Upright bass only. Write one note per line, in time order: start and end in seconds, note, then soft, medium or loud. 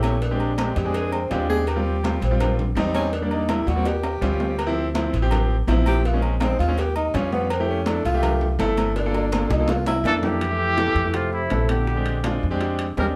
0.00 0.70 A#1 medium
0.76 1.27 F2 medium
1.31 2.16 D#2 medium
2.22 2.73 A#1 medium
2.75 3.61 E2 loud
3.67 4.18 D#2 medium
4.22 5.07 D2 medium
5.13 5.64 A1 medium
5.67 6.53 A#1 loud
6.59 7.10 D#2 medium
7.14 7.99 F2 loud
8.05 8.56 C2 medium
8.59 9.44 G1 loud
9.50 10.01 C2 loud
10.04 10.90 F2 loud
10.95 11.47 F2 medium
11.51 12.36 A#1 medium
12.43 12.94 F2 medium
12.97 13.16 D#2 medium